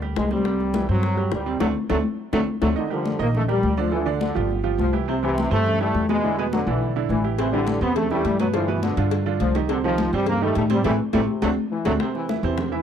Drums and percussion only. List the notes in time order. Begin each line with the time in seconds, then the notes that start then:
0.02 high bongo, high conga
0.16 high bongo, low bongo, high conga
0.31 high bongo, high conga
0.45 high bongo, high conga
0.60 high bongo, high conga
0.74 high bongo, high conga
0.89 high bongo, high conga
1.03 high bongo, high conga
1.17 high bongo, high conga
1.32 high bongo, low bongo, high conga
1.46 high conga
1.60 low bongo, high conga
1.90 low bongo, high conga
2.33 low bongo, high conga
2.62 low bongo, high conga
2.77 high conga
2.91 high conga
3.05 high conga
3.20 high conga
3.35 high conga, low conga
3.49 high conga, low conga
3.63 high conga
3.77 high conga
3.92 high conga
4.06 high conga
4.21 high conga
4.36 high conga
4.51 high conga
4.65 high conga
4.79 high conga
4.94 high conga
5.09 high conga
5.23 high conga
5.38 high conga
5.52 high conga
5.66 high conga, low conga
5.81 high conga
5.95 high conga
6.09 high conga
6.24 high conga
6.39 high conga
6.53 high conga
6.67 high conga
6.82 high conga
6.96 high conga
7.10 high conga
7.24 high conga
7.38 cowbell, high conga
7.53 high conga
7.67 cowbell, high conga
7.82 high conga
7.96 cowbell, high conga, low conga
8.11 high conga, low conga
8.25 cowbell, high conga
8.40 cowbell, high conga
8.54 cowbell, high conga
8.69 high conga
8.83 cowbell, high conga
8.97 cowbell, high conga
9.11 cowbell, high conga
9.26 high conga
9.40 cowbell, high conga
9.55 cowbell, high conga
9.69 cowbell, high conga
9.84 high conga
9.98 cowbell, high conga
10.13 high conga
10.26 cowbell, high conga, low conga
10.41 high conga
10.55 cowbell, high conga
10.70 cowbell, high conga
10.84 cowbell, high conga
11.13 cowbell, high conga
11.42 cowbell, high conga
11.85 cowbell, high conga
12.00 high bongo, high conga
12.15 high bongo, high conga
12.29 high bongo, high conga
12.43 high bongo, high conga
12.58 high bongo, high conga, low conga
12.73 high conga